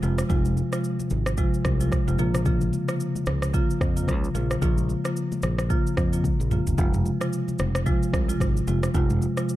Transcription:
0.02 F1 C3 F3 G#3 F4, high conga, low conga, shaker
0.18 cross-stick, shaker
0.29 F1 C3 F3 G#3 F4, kick, low conga, shaker
0.45 high conga, shaker
0.57 high conga, shaker
0.72 C3 F3 G#3 F4, cross-stick, shaker
0.84 shaker
0.99 high conga, shaker
1.10 G#1, high conga, low conga, shaker
1.26 cross-stick, shaker
1.37 C3 F3 G#3 F4, kick, shaker
1.54 shaker
1.65 C2, kick, cross-stick, shaker
1.80 C3 F3 G#3 F4, shaker
1.92 kick, cross-stick, shaker
2.07 F1 C3 F3 G#3 F4, shaker
2.19 A#1 C#3 F3 A#3 F4, high conga, low conga, shaker
2.35 cross-stick, shaker
2.46 C#3 F3 A#3 F4, kick, low conga, shaker
2.61 high conga, shaker
2.73 high conga, shaker
2.88 C#3 F3 A#3 F4, cross-stick, shaker
3.00 shaker
3.16 high conga, shaker
3.26 C#2, cross-stick, high conga, low conga, shaker
3.42 cross-stick, shaker
3.54 C#3 F3 A#3 F4, kick, shaker
3.70 shaker
3.81 F2, kick, cross-stick, shaker
3.96 C#3 F3 A#3 F4, shaker
4.08 C#2, kick, cross-stick, shaker
4.24 shaker
4.34 A#1 C#3 F3 A#3 F4, high conga, low conga, shaker
4.51 cross-stick, shaker
4.62 A#1 C#3 F3 A#3 F4, kick, low conga, shaker
4.78 high conga, shaker
4.89 high conga, shaker
5.04 C#3 F3 A#3 F4, cross-stick, shaker
5.16 shaker
5.32 high conga, shaker
5.42 A#1, cross-stick, high conga, low conga, shaker
5.59 cross-stick, shaker
5.70 C#3 F3 A#3 F4, kick, shaker
5.87 shaker
5.97 F2, kick, cross-stick, shaker
6.12 C#3 F3 A#3 F4, shaker
6.24 kick, high tom, high conga, shaker
6.40 A#1, mid tom, shaker
6.51 C#3 F3 A#3 F4, mid tom, high conga, low conga, shaker
6.67 G1, floor tom, shaker
6.78 F1 C3 F3 G#3 F4, kick, low conga, shaker
6.94 mid tom, high conga, shaker
7.06 high conga, shaker
7.20 C3 F3 G#3 F4, cross-stick, shaker
7.33 shaker
7.48 high conga, shaker
7.59 F1, cross-stick, high conga, low conga, shaker
7.75 cross-stick, shaker
7.86 C3 F3 G#3 F4, kick, shaker
8.03 shaker
8.13 C2, kick, cross-stick, shaker
8.29 C3 F3 G#3 F4, shaker
8.40 G#1, kick, cross-stick, high conga, shaker
8.57 shaker
8.67 F1 C3 F3 G#3 F4, high conga, low conga, shaker
8.83 cross-stick, shaker
8.94 F1 C3 F3 G#3 F4, kick, low conga, shaker
9.10 mid tom, high conga, shaker
9.22 high conga, shaker
9.37 C3 F3 G#3 F4, cross-stick, shaker
9.49 shaker

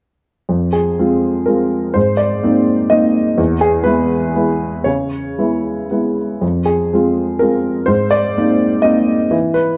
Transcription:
0.49 F2
0.73 G#4
0.99 G#3 C4 F4
1.46 G#3 C4 F4 A#4
1.94 G#2 C5
2.17 D5
2.43 A#3 C4 D#4
2.90 A#3 C4 D#4 D#5
3.38 E2
3.61 G#4
3.84 G#3 B3 E4 B4
4.36 G#3 B3 E4
4.84 C#3 C#5
5.38 G#3 B3 E4
5.90 G#3 B3 E4
6.41 F2
6.65 G#4
6.93 G#3 C4 F4
7.39 G#3 C4 F4 A#4
7.86 G#2 C5
8.11 D5
8.37 A#3 C4 D#4
8.82 A#3 C4 D#4 D#5
9.31 E3
9.54 B4

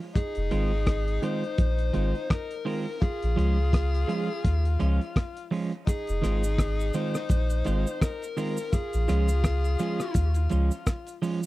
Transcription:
0.01 muted clean electric guitar stroke
0.15 D#4 G#4, kick, closed hi-hat
0.35 F1, closed hi-hat
0.51 G#1 D#3 G#3 C4 F4, closed hi-hat
0.87 kick, cross-stick, closed hi-hat
1.08 closed hi-hat
1.22 D#3 G#3 C4 F4 C5, closed hi-hat
1.44 closed hi-hat
1.58 A#1, kick, closed hi-hat
1.79 closed hi-hat
1.93 G#1 D#3 G#3 C4 F4, closed hi-hat
2.15 closed hi-hat
2.30 A#4, kick, cross-stick, closed hi-hat
2.51 closed hi-hat
2.65 D#3 G#3 C4 F4, open hi-hat
3.01 F4 G#4, kick, closed hi-hat
3.22 A#1, closed hi-hat
3.36 C#2 F3 G#3 C#4 F4, closed hi-hat
3.73 kick, cross-stick, closed hi-hat
3.95 closed hi-hat
4.08 F3 G#3 C#4 F4, closed hi-hat
4.45 D#2, kick, closed hi-hat
4.65 closed hi-hat
4.79 C#2 F3 G#3 C#4 F4, closed hi-hat
5.01 closed hi-hat
5.16 kick, cross-stick, closed hi-hat
5.37 closed hi-hat
5.51 F3 G#3 C#4 F4, open hi-hat
5.72 closed hi-hat
5.86 D#4 G#4, kick, closed hi-hat, cabasa
6.07 F1, closed hi-hat, cabasa
6.22 G#1 D#3 G#3 C4 F4, cross-stick, closed hi-hat, cabasa
6.44 cabasa
6.58 kick, cross-stick, closed hi-hat, cabasa
6.79 closed hi-hat, cabasa
6.94 D#3 G#3 C4 F4 C5, closed hi-hat, cabasa
7.15 cross-stick, cabasa
7.29 A#1, kick, closed hi-hat, cabasa
7.50 closed hi-hat, cabasa
7.64 G#1 D#3 G#3 C4 F4, closed hi-hat, cabasa
7.87 cabasa
8.01 A#4, kick, cross-stick, closed hi-hat, cabasa
8.22 closed hi-hat, cabasa
8.37 D#3 G#3 C4 F4, open hi-hat, cabasa
8.57 cabasa
8.72 F4 G#4, kick, closed hi-hat, cabasa
8.93 A#1, closed hi-hat, cabasa
9.08 C#2 F3 G#3 C#4 F4, cross-stick, closed hi-hat, cabasa
9.28 closed hi-hat, cabasa
9.44 kick, cross-stick, closed hi-hat, cabasa
9.64 closed hi-hat, cabasa
9.79 F3 G#3 C#4 F4, closed hi-hat, cabasa
10.00 cross-stick, cabasa
10.14 D#2, kick, closed hi-hat, cabasa
10.34 closed hi-hat, cabasa
10.50 C#2 F3 G#3 C#4 F4, closed hi-hat, cabasa
10.71 closed hi-hat, cabasa
10.87 kick, cross-stick, closed hi-hat, cabasa
11.07 closed hi-hat, cabasa
11.22 F3 G#3 C#4 F4, open hi-hat, cabasa
11.43 muted clean electric guitar stroke

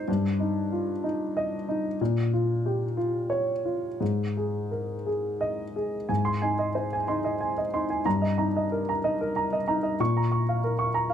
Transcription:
Already playing: C5
0.08 G2
0.40 D#4
0.72 F4
1.04 D#4
1.37 D#5
1.69 D#4
2.01 A#2
2.33 F4
2.66 G4
2.97 F4
3.30 C#5
3.65 F4
4.00 G#2
4.37 G#4
4.71 A#4
5.06 G#4
5.41 D#5
5.76 G#4
6.09 G#2 G#5
6.25 C6
6.42 D#4 G#5
6.59 D#5
6.75 C5
6.93 G#5
7.08 D#4 C6
7.24 D#5
7.41 G#5
7.58 D#5
7.73 D#4 C6
7.90 G#5
8.05 G2 A#5
8.22 D#5
8.38 D#4 A#5
8.57 D#5
8.72 A#4
8.89 A#5
9.04 D#4 D#5
9.21 A#4
9.36 A#5
9.53 D#5
9.68 D#4 A#5
9.83 D#5
10.00 A#2 C#6
10.17 A#5
10.32 C#6
10.49 F5
10.64 A#4
10.79 C#6
10.94 A#5
11.10 F5

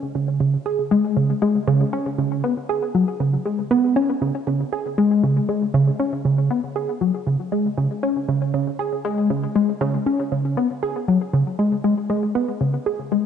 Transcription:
0.15 C#3
0.40 C#3
0.66 G#4
0.91 G#3
1.17 C#3
1.42 G#3
1.68 C#3
1.93 C#4
2.18 C#3
2.44 B3
2.69 G#4
2.95 F#3
3.20 C#3
3.45 G#3
3.71 B3
3.96 C#4
4.22 C#3
4.47 C#3
4.73 G#4
4.98 G#3
5.23 C#3
5.49 G#3
5.74 C#3
6.00 C#4
6.25 C#3
6.51 B3
6.76 G#4
7.01 F#3
7.27 C#3
7.52 G#3
7.78 C#3
8.03 C#4
8.29 C#3
8.54 C#3
8.79 G#4
9.05 G#3
9.30 C#3
9.56 G#3
9.81 C#3
10.06 C#4
10.32 C#3
10.57 B3
10.83 G#4
11.08 F#3
11.33 C#3
11.59 G#3
11.84 G#3
12.10 G#3
12.35 B3
12.61 C#3
12.86 G#4
13.12 G#3

